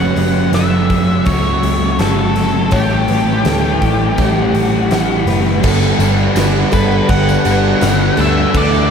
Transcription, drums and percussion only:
0.17 open hi-hat
0.53 snare, open hi-hat
0.90 kick, open hi-hat
1.26 kick, open hi-hat
1.63 open hi-hat
1.99 snare, open hi-hat
2.36 snare, open hi-hat
2.72 kick, open hi-hat
3.08 open hi-hat
3.45 snare, open hi-hat
3.82 kick, open hi-hat
4.18 kick, open hi-hat
4.55 open hi-hat
4.91 snare, open hi-hat
5.28 snare, open hi-hat
5.64 kick, crash
5.83 tambourine
6.00 tambourine, crash
6.19 tambourine
6.36 snare, tambourine, crash
6.56 tambourine
6.73 kick, tambourine, crash
6.92 tambourine
7.09 kick, tambourine, crash
7.29 tambourine
7.45 tambourine, crash
7.81 snare, tambourine, crash
8.19 snare, tambourine, crash
8.55 kick, crash
8.74 tambourine

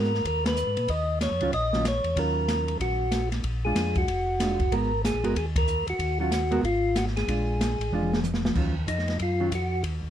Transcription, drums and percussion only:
0.04 snare
0.14 snare
0.25 kick, ride
0.46 snare, ride
0.56 hi-hat pedal
0.77 ride
0.88 kick, ride
1.21 snare, hi-hat pedal, ride
1.40 ride
1.53 kick, ride
1.73 snare
1.85 snare, hi-hat pedal, ride
2.04 ride
2.16 kick, ride
2.48 snare, hi-hat pedal, ride
2.68 ride
2.80 kick, ride
3.11 snare, hi-hat pedal, ride
3.32 snare, ride
3.44 kick, ride
3.76 snare, hi-hat pedal, ride
3.95 kick, ride
4.08 kick, ride
4.40 snare, hi-hat pedal, ride
4.60 kick, ride
4.72 kick, ride
5.05 snare, hi-hat pedal, ride
5.24 ride
5.36 kick, ride
5.56 kick, ride
5.67 hi-hat pedal
5.87 ride
5.99 kick, ride
6.32 snare, hi-hat pedal, ride
6.52 ride
6.64 kick, ride
6.96 snare, hi-hat pedal, ride
7.07 snare
7.17 snare, ride
7.28 kick, ride
7.61 snare, hi-hat pedal, ride
7.81 ride
7.92 high tom
8.03 high tom
8.13 snare
8.24 hi-hat pedal, high tom
8.34 snare
8.45 snare
8.55 kick, crash
8.88 kick, hi-hat pedal, ride
8.99 snare
9.08 snare, ride
9.19 kick, ride
9.52 kick, hi-hat pedal, ride
9.84 kick, ride

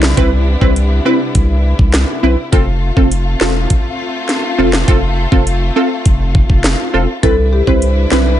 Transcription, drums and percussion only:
0.03 snare
0.17 kick, closed hi-hat
0.61 kick
0.76 closed hi-hat
1.35 kick, closed hi-hat
1.79 kick
1.94 snare, closed hi-hat
2.53 kick, closed hi-hat
2.97 kick
3.12 closed hi-hat
3.41 snare
3.70 kick, closed hi-hat
4.29 snare, closed hi-hat
4.73 snare
4.88 kick, closed hi-hat
5.32 kick
5.47 closed hi-hat
6.06 kick, closed hi-hat
6.35 kick
6.50 kick
6.64 snare, closed hi-hat
7.23 kick, closed hi-hat
7.67 kick
7.82 closed hi-hat
8.12 snare

